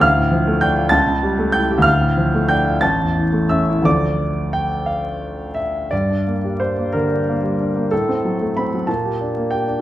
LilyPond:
<<
  \new Staff \with { instrumentName = "Grand piano" } { \time 6/8 \key d \minor \tempo 4. = 62 << { f'''4 g'''8 a'''4 g'''8 | f'''4 g'''8 a'''4 e'''8 | d'''4 g''8 f''4 e''8 | \key g \minor d''4 c''8 bes'4. |
a'4 b''8 a''4 g''8 | } \\ { f''4 g''8 a''4 g''8 | f''4 g''8 a''4 e''8 | d''2~ d''8 r8 | r2. |
r2. | } >> }
  \new Staff \with { instrumentName = "Grand piano" } { \time 6/8 \key d \minor d,16 a,16 f16 a16 d'16 f'16 cis,16 cis16 g16 a16 e'16 g'16 | d,16 a,16 f16 a16 d'16 f'16 a,,16 e,16 e16 a16 cis'16 e'16 | <d, f a d'>2. | \key g \minor g,16 d'16 bes16 g16 d'16 bes16 d16 d'16 bes16 g16 d'16 bes16 |
a,16 c'16 fis16 a16 c'16 fis16 bes,16 g'16 d'16 bes16 g'16 d'16 | }
>>